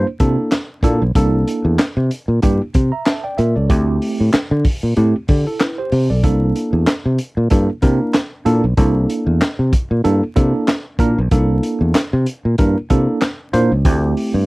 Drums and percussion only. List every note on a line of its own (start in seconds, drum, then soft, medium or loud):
0.20 kick medium
0.20 closed hi-hat medium
0.51 snare medium
0.51 clap medium
0.51 closed hi-hat medium
0.83 kick medium
0.83 closed hi-hat medium
1.15 kick loud
1.15 closed hi-hat medium
1.48 closed hi-hat medium
1.79 snare loud
1.79 clap medium
1.79 closed hi-hat medium
2.11 closed hi-hat medium
2.42 kick medium
2.42 closed hi-hat medium
2.74 kick loud
2.74 closed hi-hat medium
3.06 snare medium
3.06 clap medium
3.06 closed hi-hat medium
3.38 closed hi-hat medium
3.70 kick loud
3.70 closed hi-hat medium
4.02 open hi-hat medium
4.33 snare loud
4.33 clap medium
4.33 closed hi-hat medium
4.65 kick medium
4.65 open hi-hat medium
4.97 closed hi-hat medium
5.28 kick medium
5.28 open hi-hat medium
5.60 snare medium
5.60 clap medium
5.60 closed hi-hat medium
5.92 open hi-hat medium
6.24 kick loud
6.24 closed hi-hat medium
6.56 closed hi-hat medium
6.87 snare loud
6.87 clap medium
6.87 closed hi-hat medium
7.18 closed hi-hat medium
7.50 kick loud
7.50 closed hi-hat medium
7.82 kick medium
7.82 closed hi-hat medium
8.14 snare medium
8.14 clap medium
8.14 closed hi-hat medium
8.46 closed hi-hat medium
8.77 kick loud
8.77 closed hi-hat medium
9.10 closed hi-hat medium
9.42 snare loud
9.42 clap medium
9.42 closed hi-hat medium
9.73 kick loud
9.73 closed hi-hat medium
10.05 closed hi-hat medium
10.36 kick loud
10.36 closed hi-hat medium
10.68 snare loud
10.68 clap medium
10.68 closed hi-hat medium
10.99 kick loud
10.99 closed hi-hat medium
11.31 kick loud
11.31 closed hi-hat medium
11.63 closed hi-hat medium
11.95 snare loud
11.95 clap medium
11.95 closed hi-hat medium
12.26 closed hi-hat medium
12.58 kick loud
12.58 closed hi-hat medium
12.90 kick medium
12.90 closed hi-hat medium
13.21 snare medium
13.21 clap medium
13.21 closed hi-hat medium
13.54 closed hi-hat medium
13.85 kick loud
13.85 closed hi-hat medium
14.17 open hi-hat medium